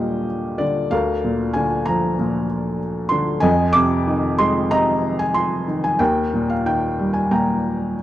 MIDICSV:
0, 0, Header, 1, 2, 480
1, 0, Start_track
1, 0, Key_signature, -3, "major"
1, 0, Tempo, 634921
1, 693, Time_signature, 4, 2, 24, 8
1, 4043, Tempo, 661521
1, 5986, End_track
2, 0, Start_track
2, 0, Title_t, "Felt piano"
2, 0, Program_c, 0, 0
2, 0, Control_c, 0, 64, 127
2, 0, Note_on_c, 0, 39, 52
2, 0, Note_on_c, 0, 46, 43
2, 0, Note_on_c, 0, 50, 40
2, 0, Note_on_c, 0, 55, 42
2, 0, Note_on_c, 0, 67, 51
2, 0, Note_on_c, 0, 75, 75
2, 0, Note_on_c, 0, 77, 51
2, 0, Note_on_c, 0, 79, 73
2, 0, Note_on_c, 0, 80, 72
2, 0, Note_on_c, 0, 82, 81
2, 182, Note_off_c, 0, 50, 0
2, 425, Note_off_c, 0, 55, 0
2, 440, Note_on_c, 0, 74, 65
2, 451, Note_on_c, 0, 50, 49
2, 473, Note_off_c, 0, 75, 0
2, 664, Note_off_c, 0, 46, 0
2, 667, Note_off_c, 0, 67, 0
2, 669, Note_off_c, 0, 39, 0
2, 686, Note_off_c, 0, 50, 0
2, 686, Note_off_c, 0, 77, 0
2, 686, Note_on_c, 0, 77, 82
2, 695, Note_off_c, 0, 74, 0
2, 696, Note_on_c, 0, 38, 62
2, 700, Note_on_c, 0, 70, 56
2, 702, Note_off_c, 0, 82, 0
2, 702, Control_c, 0, 64, 0
2, 705, Note_off_c, 0, 80, 0
2, 708, Note_off_c, 0, 79, 0
2, 845, Control_c, 0, 64, 127
2, 940, Note_on_c, 0, 46, 44
2, 1144, Note_off_c, 0, 77, 0
2, 1160, Note_on_c, 0, 80, 78
2, 1176, Note_on_c, 0, 50, 47
2, 1403, Note_on_c, 0, 82, 79
2, 1419, Note_off_c, 0, 80, 0
2, 1425, Note_on_c, 0, 53, 50
2, 1632, Note_off_c, 0, 70, 0
2, 1644, Note_off_c, 0, 46, 0
2, 1655, Note_on_c, 0, 46, 50
2, 1855, Note_off_c, 0, 82, 0
2, 2096, Note_off_c, 0, 50, 0
2, 2331, Note_off_c, 0, 53, 0
2, 2335, Note_on_c, 0, 84, 85
2, 2354, Note_on_c, 0, 50, 57
2, 2564, Note_off_c, 0, 46, 0
2, 2565, Note_off_c, 0, 38, 0
2, 2566, Note_off_c, 0, 84, 0
2, 2573, Note_on_c, 0, 80, 96
2, 2583, Note_on_c, 0, 75, 67
2, 2586, Note_off_c, 0, 50, 0
2, 2589, Note_on_c, 0, 41, 73
2, 2605, Control_c, 0, 64, 0
2, 2741, Control_c, 0, 64, 127
2, 2817, Note_on_c, 0, 86, 106
2, 2832, Note_off_c, 0, 80, 0
2, 2839, Note_on_c, 0, 48, 56
2, 3079, Note_on_c, 0, 51, 57
2, 3315, Note_on_c, 0, 84, 93
2, 3318, Note_on_c, 0, 56, 58
2, 3325, Note_off_c, 0, 86, 0
2, 3526, Note_off_c, 0, 75, 0
2, 3550, Note_off_c, 0, 48, 0
2, 3560, Note_on_c, 0, 82, 98
2, 3562, Note_on_c, 0, 48, 53
2, 3563, Note_on_c, 0, 75, 72
2, 3567, Note_off_c, 0, 84, 0
2, 3925, Note_on_c, 0, 80, 81
2, 3935, Note_off_c, 0, 82, 0
2, 4017, Note_off_c, 0, 51, 0
2, 4040, Note_on_c, 0, 84, 86
2, 4048, Note_off_c, 0, 80, 0
2, 4249, Note_off_c, 0, 56, 0
2, 4283, Note_on_c, 0, 51, 52
2, 4399, Note_on_c, 0, 80, 72
2, 4404, Note_off_c, 0, 84, 0
2, 4485, Note_off_c, 0, 41, 0
2, 4488, Note_off_c, 0, 48, 0
2, 4488, Note_off_c, 0, 75, 0
2, 4510, Note_on_c, 0, 79, 79
2, 4512, Note_off_c, 0, 51, 0
2, 4514, Note_on_c, 0, 70, 58
2, 4518, Note_on_c, 0, 39, 64
2, 4522, Note_off_c, 0, 80, 0
2, 4526, Control_c, 0, 64, 0
2, 4670, Control_c, 0, 64, 127
2, 4760, Note_on_c, 0, 46, 45
2, 4876, Note_on_c, 0, 77, 67
2, 4884, Note_off_c, 0, 79, 0
2, 4994, Note_on_c, 0, 51, 44
2, 4997, Note_off_c, 0, 77, 0
2, 4997, Note_on_c, 0, 79, 70
2, 5236, Note_on_c, 0, 55, 43
2, 5339, Note_on_c, 0, 80, 60
2, 5361, Note_off_c, 0, 79, 0
2, 5438, Note_off_c, 0, 70, 0
2, 5457, Note_off_c, 0, 46, 0
2, 5468, Note_off_c, 0, 80, 0
2, 5468, Note_on_c, 0, 46, 44
2, 5469, Note_on_c, 0, 82, 64
2, 5472, Note_on_c, 0, 79, 46
2, 5935, Note_off_c, 0, 51, 0
2, 5986, Note_off_c, 0, 39, 0
2, 5986, Note_off_c, 0, 46, 0
2, 5986, Note_off_c, 0, 55, 0
2, 5986, Note_off_c, 0, 79, 0
2, 5986, Note_off_c, 0, 82, 0
2, 5986, End_track
0, 0, End_of_file